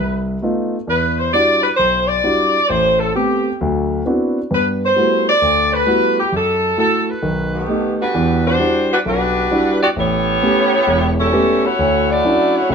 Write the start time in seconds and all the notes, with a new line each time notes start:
Already playing: C2 B4
0.42 A3 B3 D#4 F4
0.87 E2 B4
1.19 C5
1.33 G3 D4 E4 F#4 D5
1.63 B4
1.77 B1 C5
2.08 D5
2.24 G3 D4 E4 F#4
2.69 A1 C5
3.00 A4
3.15 A3 B3 C4 G4
3.61 D2 F#3
4.06 B3 C4 D4 E4 F#4
4.50 G2 B3
4.55 B4
4.85 C5
4.96 G3 A3 B3 E4 F#4
5.29 D5
5.41 D2
5.74 B4
5.86 G3 A3 B3 E4 F#4
6.20 G4
6.32 F#2
6.36 A4
6.77 A3 E4 F#4 A4
7.09 B4
7.22 B1 D#3
7.54 D#3 A3 B3 G4
7.68 A3 B3 D#4 G4
8.02 G3 D4 F#4 B4
8.14 E2 E3
8.47 G3 D4 F#4 C5
8.60 G3 D4 E4 F#4
8.93 G3 D4 F#4 B4
9.05 B1 G3 D4 F#4 B4
9.51 G3 D4 E4 F#4
9.83 B3 F#4 G4 D5
9.96 A1 B3 E4 G4 C#5
10.43 A3 B3 C#4 G4
10.87 E1 E2
11.20 G3 C#4 E4 A4
11.33 A3 B3 C#4 G4
11.66 A3 E4 F#4 C#5
11.79 D2
12.11 A3 E4 F#4 D5
12.24 F#3 C#4 D4 E4
12.56 A3 E4 F#4 C#5
12.69 A1 C#3 A3 C#5